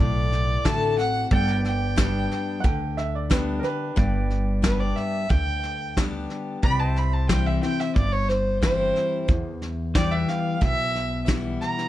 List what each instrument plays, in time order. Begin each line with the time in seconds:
Already playing: steel-string acoustic guitar A2, pedal steel guitar A4 D5 F#5
0.00 upright bass B1, fiddle D5
0.32 snare
0.65 upright bass A1, steel-string acoustic guitar D3 A3 C4 F#4, fiddle A5, kick, snare, hi-hat pedal
0.97 steel-string acoustic guitar C4 F#4, fiddle F#5, snare
1.31 upright bass G1, steel-string acoustic guitar G2, pedal steel guitar A4 D5 F#5, fiddle G5, kick, snare
1.48 snare
1.54 pedal steel guitar B4 G5
1.65 fiddle G5, snare
1.96 steel-string acoustic guitar G3 B3 D4 G4, kick, snare, hi-hat pedal
2.31 snare
2.60 upright bass D2, steel-string acoustic guitar D3, upright piano F#5, kick, snare
2.65 upright piano G5
2.97 upright piano E5, snare
3.15 upright piano D5
3.30 steel-string acoustic guitar G3 B3 D4 G4, upright piano B4, kick, snare, hi-hat pedal
3.59 steel-string acoustic guitar G4, upright piano A#4
3.64 steel-string acoustic guitar D4, upright piano B4, snare
3.96 upright bass G1, steel-string acoustic guitar G2, pedal steel guitar B4 D5 G5, kick, snare
4.30 snare
4.62 steel-string acoustic guitar G3 B3 D4 G4, fiddle B4, kick, snare, hi-hat pedal
4.80 fiddle D5
4.96 fiddle E5, snare
5.30 upright bass D2, steel-string acoustic guitar D3, fiddle G5, kick, snare
5.63 snare
5.97 steel-string acoustic guitar G3 B3 D4 G4, kick, snare, hi-hat pedal
6.30 snare
6.63 upright bass C2, steel-string acoustic guitar C3, pedal steel guitar B4 D5 G5, fiddle B5, kick, snare
6.80 fiddle A5
6.85 pedal steel guitar C5
6.91 pedal steel guitar E5
6.96 fiddle B5, snare
7.13 fiddle A5
7.29 steel-string acoustic guitar E3 G3 C4 E4, fiddle G5, kick, snare, hi-hat pedal
7.47 fiddle E5
7.63 steel-string acoustic guitar C4 E4, fiddle G5, snare
7.80 fiddle E5, snare
7.96 upright bass G1, steel-string acoustic guitar G2, fiddle D5, kick, snare
8.12 fiddle C#5
8.29 fiddle C5, snare
8.62 steel-string acoustic guitar E3 G3 C4 E4, fiddle C5, kick, snare, hi-hat pedal
8.96 snare
9.28 steel-string acoustic guitar E2, upright bass E2, kick, snare
9.62 snare
9.95 steel-string acoustic guitar E3 G3 B3, pedal steel guitar C5 G5, fiddle D5, kick, snare, hi-hat pedal
10.11 pedal steel guitar B4, fiddle E5
10.28 fiddle F5, snare
10.61 upright bass B1, steel-string acoustic guitar B2, fiddle E5, kick, snare
10.96 snare
11.26 steel-string acoustic guitar E3 G3 B3 E4, kick, snare, hi-hat pedal
11.61 fiddle A#5, snare
11.78 snare